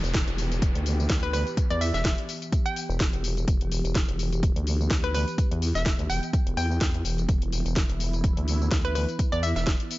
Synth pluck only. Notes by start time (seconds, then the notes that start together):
1.23 B4
1.33 B4
1.71 D5
1.81 E5
1.94 E5
2.66 G5
5.04 B4
5.15 B4
5.75 E5
6.10 G5
6.57 G5
8.85 B4
8.95 B4
9.32 D5
9.43 E5
9.56 E5